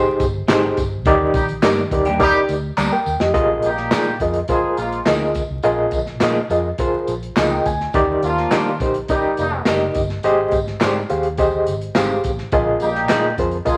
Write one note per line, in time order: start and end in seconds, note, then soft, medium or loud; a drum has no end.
0.00 0.25 D#4 medium
0.00 0.25 G4 medium
0.00 0.25 G#4 medium
0.00 0.25 C5 loud
0.20 0.41 G1 medium
0.20 kick medium
0.20 closed hi-hat medium
0.20 tambourine medium
0.48 0.69 G#1 loud
0.48 0.62 D#3 medium
0.48 0.63 G#3 medium
0.48 0.63 C4 medium
0.48 0.83 D#4 medium
0.48 0.83 G4 medium
0.48 0.63 G4 medium
0.48 0.83 G#4 medium
0.48 0.83 C5 medium
0.48 snare loud
0.48 clap loud
0.48 closed hi-hat loud
0.48 tambourine loud
0.77 1.06 G1 medium
0.77 kick medium
0.77 closed hi-hat medium
0.77 tambourine medium
1.05 1.26 D#2 loud
1.05 1.88 D#3 medium
1.05 1.40 D#4 loud
1.05 1.40 G4 loud
1.05 1.40 A#4 loud
1.05 1.41 D5 loud
1.05 kick loud
1.05 closed hi-hat medium
1.05 tambourine soft
1.34 1.55 A#1 loud
1.34 1.46 G3 medium
1.34 1.46 D#4 medium
1.34 1.46 G4 medium
1.34 kick loud
1.34 closed hi-hat medium
1.34 tambourine medium
1.49 closed hi-hat medium
1.62 1.84 G2 medium
1.62 1.77 G3 medium
1.62 1.77 A#3 medium
1.62 1.77 D4 medium
1.62 1.80 D#4 medium
1.62 1.78 G4 medium
1.62 1.80 G4 medium
1.62 1.81 A#4 medium
1.62 1.81 D5 medium
1.62 snare loud
1.62 clap loud
1.62 closed hi-hat medium
1.62 tambourine loud
1.91 2.33 D#2 medium
1.91 2.09 D#4 medium
1.91 2.09 G4 medium
1.91 2.09 A#4 medium
1.91 2.09 D5 medium
1.91 kick medium
1.91 closed hi-hat medium
2.05 2.18 G3 medium
2.05 2.17 A#3 medium
2.05 2.17 D4 medium
2.05 2.17 G4 medium
2.05 closed hi-hat medium
2.19 2.39 G3 medium
2.19 2.54 D#4 medium
2.19 2.39 D#4 medium
2.19 2.54 G4 medium
2.19 2.39 G4 loud
2.19 2.54 A#4 medium
2.19 2.54 D5 medium
2.19 kick medium
2.19 closed hi-hat medium
2.19 tambourine medium
2.49 2.70 D2 medium
2.49 closed hi-hat medium
2.49 tambourine medium
2.77 2.88 D2 loud
2.77 2.92 G3 medium
2.77 2.92 A#3 medium
2.77 2.92 D4 medium
2.77 2.92 G4 medium
2.77 2.91 D5 medium
2.77 2.91 A#5 medium
2.77 clap loud
2.77 tambourine loud
2.92 3.20 A#4 medium
2.92 3.19 G5 medium
3.06 3.17 D#2 medium
3.06 tambourine medium
3.20 3.31 F2 medium
3.20 3.48 G4 medium
3.20 3.33 D#5 medium
3.20 snare medium
3.34 3.56 A#1 medium
3.34 4.17 A#2 medium
3.34 3.69 F4 medium
3.34 3.69 G#4 medium
3.34 3.69 A#4 medium
3.34 3.69 D#5 loud
3.34 kick loud
3.34 closed hi-hat medium
3.62 3.84 A#1 loud
3.62 4.17 G3 medium
3.62 4.17 A#3 medium
3.62 4.17 D#4 medium
3.62 4.17 G4 medium
3.62 closed hi-hat medium
3.62 tambourine soft
3.77 snare soft
3.91 4.13 A#2 medium
3.91 4.06 F3 medium
3.91 4.07 A#3 medium
3.91 4.07 D#4 medium
3.91 4.09 F4 medium
3.91 4.09 G#4 medium
3.91 4.07 G#4 medium
3.91 4.09 A#4 medium
3.91 4.09 D5 medium
3.91 snare loud
3.91 clap loud
3.91 closed hi-hat medium
3.91 tambourine loud
4.20 4.41 F2 medium
4.20 4.38 F4 medium
4.20 4.38 G#4 medium
4.20 4.38 A#4 medium
4.20 4.39 D#5 medium
4.20 kick medium
4.20 closed hi-hat medium
4.20 tambourine soft
4.34 closed hi-hat medium
4.48 4.72 G#3 medium
4.48 4.72 D#4 medium
4.48 4.72 F4 medium
4.48 4.84 F4 medium
4.48 4.84 G#4 medium
4.48 4.72 G#4 medium
4.48 4.84 A#4 medium
4.48 4.84 C5 medium
4.48 kick medium
4.48 closed hi-hat medium
4.48 tambourine medium
4.63 muted fingered electric bass stroke soft
4.76 4.99 A#1 medium
4.76 5.00 F3 medium
4.76 5.00 G#3 medium
4.76 5.01 A#3 medium
4.76 5.00 F4 medium
4.76 closed hi-hat medium
4.76 tambourine medium
4.92 closed hi-hat soft
5.06 5.38 D2 medium
5.06 5.21 F3 medium
5.06 5.21 A#3 medium
5.06 5.21 D#4 medium
5.06 5.41 F4 medium
5.06 5.41 G#4 medium
5.06 5.22 G#4 medium
5.06 5.41 A#4 medium
5.06 5.41 D#5 medium
5.06 snare loud
5.06 clap loud
5.06 closed hi-hat medium
5.06 tambourine medium
5.35 kick medium
5.35 closed hi-hat medium
5.35 tambourine medium
5.50 5.61 C2 medium
5.62 5.85 A#1 medium
5.62 6.46 A#2 medium
5.62 5.98 F4 medium
5.62 5.99 G#4 loud
5.62 5.99 A#4 medium
5.62 5.99 D#5 loud
5.62 closed hi-hat medium
5.62 tambourine soft
5.91 6.13 A#1 medium
5.91 kick medium
5.91 closed hi-hat medium
5.91 tambourine soft
6.06 snare soft
6.20 6.43 A#2 medium
6.20 6.36 F3 medium
6.20 6.37 A#3 medium
6.20 6.37 D#4 medium
6.20 6.39 F4 medium
6.20 6.39 G#4 medium
6.20 6.37 G#4 medium
6.20 6.39 A#4 medium
6.20 6.40 D#5 medium
6.20 snare loud
6.20 clap loud
6.20 closed hi-hat medium
6.20 tambourine loud
6.50 6.71 F2 medium
6.50 6.68 F4 medium
6.50 6.68 G#4 medium
6.50 6.68 A#4 medium
6.50 6.68 D#5 medium
6.50 closed hi-hat medium
6.50 tambourine soft
6.78 7.14 F4 medium
6.78 7.14 G#4 medium
6.78 7.14 A#4 medium
6.78 7.14 C5 medium
6.78 kick medium
6.78 closed hi-hat medium
6.78 tambourine medium
6.93 muted fingered electric bass stroke soft
7.07 7.29 A#1 medium
7.07 closed hi-hat medium
7.07 tambourine soft
7.23 closed hi-hat medium
7.36 7.58 C#2 medium
7.36 7.51 F3 medium
7.36 7.51 A#3 medium
7.36 7.52 D#4 medium
7.36 7.71 F4 medium
7.36 7.71 G#4 medium
7.36 7.52 G#4 medium
7.36 7.71 A#4 medium
7.36 7.72 D#5 medium
7.36 7.51 F5 medium
7.36 snare loud
7.36 clap loud
7.36 closed hi-hat medium
7.36 tambourine loud
7.52 7.65 G5 medium
7.66 7.87 D2 medium
7.66 7.93 G#5 medium
7.66 kick medium
7.66 closed hi-hat medium
7.66 tambourine medium
7.80 snare soft
7.93 8.15 D#2 loud
7.93 8.77 D#3 medium
7.93 8.29 D#4 medium
7.93 8.29 G4 loud
7.93 8.29 A#4 medium
7.93 8.29 D5 loud
7.93 kick loud
7.93 closed hi-hat medium
7.93 tambourine soft
8.23 8.44 D#2 medium
8.23 8.77 F3 medium
8.23 8.77 A#3 medium
8.23 8.77 D4 medium
8.23 8.77 F4 medium
8.23 closed hi-hat medium
8.23 tambourine soft
8.37 snare soft
8.51 8.73 D#3 medium
8.51 8.66 G3 medium
8.51 8.66 A#3 medium
8.51 8.67 D4 medium
8.51 8.69 D#4 medium
8.51 8.69 G4 medium
8.51 8.67 G4 medium
8.51 8.69 A#4 medium
8.51 8.69 D5 medium
8.51 snare loud
8.51 clap loud
8.51 closed hi-hat medium
8.51 tambourine loud
8.80 9.01 A#1 medium
8.80 8.98 D#4 medium
8.80 8.98 G4 medium
8.80 8.98 A#4 medium
8.80 8.98 C5 medium
8.80 kick medium
8.80 closed hi-hat medium
8.80 tambourine soft
8.94 closed hi-hat soft
9.08 9.33 G3 medium
9.08 9.44 D#4 medium
9.08 9.33 D#4 medium
9.08 9.33 G4 medium
9.08 9.44 G4 medium
9.08 9.44 A#4 medium
9.08 9.44 D5 medium
9.08 kick loud
9.08 closed hi-hat medium
9.08 tambourine medium
9.24 muted fingered electric bass stroke soft
9.37 9.59 F1 medium
9.37 9.61 D#3 medium
9.37 9.61 G3 medium
9.37 9.61 A#3 medium
9.37 9.61 D#4 medium
9.37 closed hi-hat medium
9.37 tambourine soft
9.65 9.88 F#1 medium
9.65 9.81 G3 medium
9.65 9.81 A#3 medium
9.65 9.82 D4 medium
9.65 10.01 D#4 medium
9.65 10.01 G4 medium
9.65 9.82 G4 medium
9.65 10.01 A#4 medium
9.65 10.01 D#5 medium
9.65 snare loud
9.65 clap loud
9.65 closed hi-hat medium
9.65 tambourine loud
9.95 10.16 G1 medium
9.95 kick medium
9.95 closed hi-hat medium
9.95 tambourine medium
10.09 snare soft
10.23 10.45 G#1 loud
10.23 11.07 G#2 medium
10.23 10.58 G4 loud
10.23 10.58 G#4 medium
10.23 10.58 C5 medium
10.23 10.59 D#5 loud
10.23 closed hi-hat medium
10.23 tambourine soft
10.51 10.73 G#1 loud
10.51 kick medium
10.51 closed hi-hat medium
10.51 tambourine soft
10.67 snare soft
10.81 11.03 G#2 medium
10.81 10.96 D#3 medium
10.81 10.96 G#3 medium
10.81 10.96 C4 medium
10.81 10.96 G4 medium
10.81 10.99 G4 medium
10.81 10.99 G#4 medium
10.81 10.99 C5 medium
10.81 10.99 D5 medium
10.81 snare loud
10.81 clap loud
10.81 closed hi-hat medium
10.81 tambourine loud
11.09 11.69 D#2 medium
11.09 11.27 G4 medium
11.09 11.27 G#4 medium
11.09 11.27 C5 medium
11.09 11.27 F5 medium
11.09 closed hi-hat medium
11.09 tambourine soft
11.23 closed hi-hat medium
11.38 11.73 G4 medium
11.38 11.73 G#4 medium
11.38 11.73 C5 medium
11.38 11.73 D#5 medium
11.38 kick medium
11.38 closed hi-hat medium
11.38 tambourine medium
11.67 11.88 G#1 medium
11.67 closed hi-hat medium
11.67 tambourine medium
11.81 closed hi-hat soft
11.95 12.17 G#1 medium
11.95 12.10 D#3 medium
11.95 12.10 G#3 medium
11.95 12.10 C4 medium
11.95 12.30 G4 medium
11.95 12.11 G4 medium
11.95 12.30 G#4 medium
11.95 12.30 C5 medium
11.95 12.30 F5 medium
11.95 snare loud
11.95 clap loud
11.95 closed hi-hat medium
11.95 tambourine loud
12.24 12.45 A1 medium
12.24 kick medium
12.24 closed hi-hat medium
12.24 tambourine medium
12.38 snare soft
12.51 12.74 A#1 loud
12.51 13.35 A#2 medium
12.51 12.87 F4 loud
12.51 12.87 G#4 medium
12.51 12.87 A#4 medium
12.51 12.87 D#5 loud
12.51 kick loud
12.51 closed hi-hat medium
12.51 tambourine soft
12.80 13.03 A#1 medium
12.80 13.35 G3 medium
12.80 13.35 A#3 medium
12.80 13.35 D#4 medium
12.80 13.35 G4 medium
12.80 closed hi-hat medium
12.80 tambourine medium
12.95 snare soft
13.09 13.31 A#2 medium
13.09 13.24 F3 medium
13.09 13.25 A#3 medium
13.09 13.25 D#4 medium
13.09 13.27 F4 medium
13.09 13.27 G#4 medium
13.09 13.25 G#4 medium
13.09 13.27 A#4 medium
13.09 13.27 D#5 medium
13.09 snare loud
13.09 clap loud
13.09 closed hi-hat medium
13.09 tambourine loud
13.38 13.59 F2 medium
13.38 13.56 F4 medium
13.38 13.56 G#4 medium
13.38 13.56 A#4 medium
13.38 13.56 C5 medium
13.38 kick medium
13.38 closed hi-hat medium
13.38 tambourine soft
13.52 closed hi-hat soft
13.65 13.77 G#3 medium
13.65 13.77 D#4 medium
13.65 13.77 F4 medium
13.65 13.77 G#4 medium
13.65 13.77 A#4 medium
13.65 13.77 D#5 medium
13.65 kick medium
13.65 closed hi-hat medium
13.65 tambourine medium